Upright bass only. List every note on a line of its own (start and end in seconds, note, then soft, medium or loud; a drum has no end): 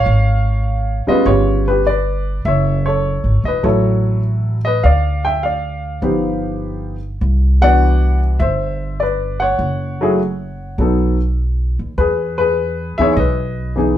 0.06 1.03 G#1 medium
1.07 muted upright bass stroke soft
1.25 2.41 G1 medium
2.45 3.20 F#1 medium
3.24 3.42 G#1 medium
3.44 3.62 E1 medium
3.64 4.79 A1 medium
4.84 5.99 D2 medium
6.02 7.18 G1 medium
7.21 8.37 C2 medium
8.40 9.56 G1 medium
9.59 10.75 F#1 medium
10.78 11.75 B1 medium
11.79 11.97 D#2 medium
11.98 12.95 E2 medium
12.99 13.16 D#2 medium
13.17 13.93 B1 medium